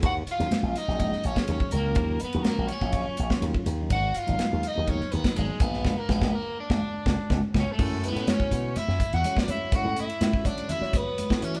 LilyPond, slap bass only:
\new Staff \with { instrumentName = "Slap bass" } { \clef bass \time 4/4 \key ees \minor \tempo 4 = 124 ees,8 r16 ees,16 r16 bes,,16 r16 bes,,8 r16 bes,,16 r16 ees,16 r16 des,8 | ees,8 r16 ees,16 r16 bes,,16 r16 bes,,8 r16 bes,,16 r16 ees,16 r16 ees,8 | aes,,8 r16 aes,,16 r16 ees,16 r16 ees,8 r16 ees,16 r16 aes,,16 r16 bes,,8 | bes,,16 r16 bes,,16 bes,,16 r8. bes,,16 r8 des,16 r16 des,16 r16 des,16 r16 |
\key fis \minor fis,8. a,16 fis8 b,8 r16 fis,16 r16 e,16 fis8 fis8~ | fis16 a,8 r16 a,16 r16 fis8 r16 fis4 a,16 e8 | }